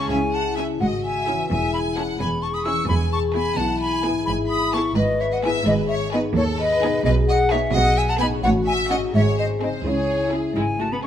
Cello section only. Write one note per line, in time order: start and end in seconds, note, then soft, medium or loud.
0.11 0.66 C#3 medium
0.81 1.36 G#2 medium
1.52 2.06 E2 medium
2.20 2.75 E2 medium
2.89 3.44 E2 medium
3.58 4.13 B2 medium
4.28 4.83 G#2 medium
4.96 5.52 G#2 medium
5.66 6.21 G#2 medium
6.35 6.91 D#2 medium
7.05 7.60 B2 medium
7.74 8.29 B2 medium
8.45 9.00 A2 medium
9.14 9.70 G#2 medium
9.86 10.42 C#3 medium
10.56 11.07 G#2 medium
10.56 10.64 G#3 medium
10.80 10.85 A3 medium
10.92 10.96 B3 medium